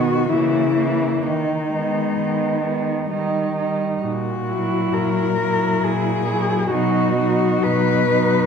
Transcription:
cello
Already playing: B2 D#3 B3 F#4
0.30 C#3 E3 A#3 E4
0.77 E3 A#3
1.22 D#3 D#4
1.69 G#3 B3
2.16 D#3
2.63 G#3 B3
3.09 D#3 G3 D#4
3.56 G3 D#4
4.02 A#2 F#4
4.48 F#3 E4
4.94 A#2 A#4
5.39 F#3 E4
5.83 A#2 G#4
6.26 F#3 E4
6.70 B2 F#3 D#4 F#4
7.16 F#3 D#4
7.63 B2 B4
8.08 F#3 D#4

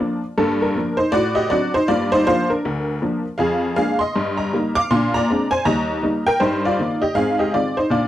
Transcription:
honky-tonk piano
Already playing: F4 D5
0.00 F3 A#3 D4
0.38 G2 A#3 D4 A4
0.62 D4 A#4
0.76 F3 A#3 D4
0.97 D#4 C5
1.12 A2 F#4 D5
1.35 G4 D#5
1.50 F#3 C4 D4 F#4 D5
1.74 D#4 C5
1.88 G2 A#3 F4 D5
2.12 D#4 C5
2.27 F3 A#3 D4 F4 C5
2.50 D4 A#4
2.65 D2
3.02 F3 A#3 D4
3.38 F2 G#4 F5
3.76 G#3 A#3 D4 G#4 F5
3.99 D#5 C6
4.16 G2
4.37 D#5 A#5
4.53 G3 A#3 D#4
4.75 F5 D6
4.91 A#2 D4 F5 C6
5.14 D5 A#5
5.30 G#3 C4 D4
5.51 C5 G#5
5.65 D#2 G3 D#5 A#5
6.03 G3 A#3 D#4
6.27 A#4 G5
6.40 G2 D#4 C5
6.65 F4 D5
6.79 D#3 A#3 D#4
7.02 G4 D#5
7.15 G#2 C4 G#4 F5
7.39 G4 D#5
7.54 D#3 G#3 C4 F4 D5
7.77 D#4 C5
7.90 A#2 D4 F4 D5

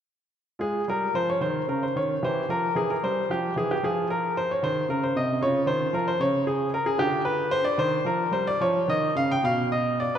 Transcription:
grand piano
0.59 G#3 F4 G#4
0.88 G3 A#4
1.14 F3 C5
1.30 C#5
1.41 D#3 C5
1.68 C#3 A#4
1.83 C5
1.96 D#3 C#5
2.23 E3 G4 C5
2.49 F3 A#4
2.75 E3 G#4
2.90 A#4
3.03 G3 C5
3.29 F3 G4
3.56 E3 G#4
3.71 G4
3.83 F3 F4 G#4
4.10 A#4
4.37 C5
4.51 C#5
4.63 D#3 C5
4.89 C#3 A#4
5.03 C5
5.15 C3 D#5
5.41 C#3 F4 C#5
5.66 D#3 C5
5.93 F3 A#4
6.08 C5
6.20 C#3 C#5
6.47 G#4
6.74 A#4
6.86 G#4
6.98 D3 F4 G4
7.25 B4
7.51 C5
7.65 D5
7.78 D#3 C5
8.05 F3 A#4
8.31 G3 C5
8.47 D5
8.60 F3 C#5
8.88 D#3 D#5
9.15 C#3 F5
9.31 G5
9.43 B2 F5
9.72 D#5
10.00 D5
10.15 B4

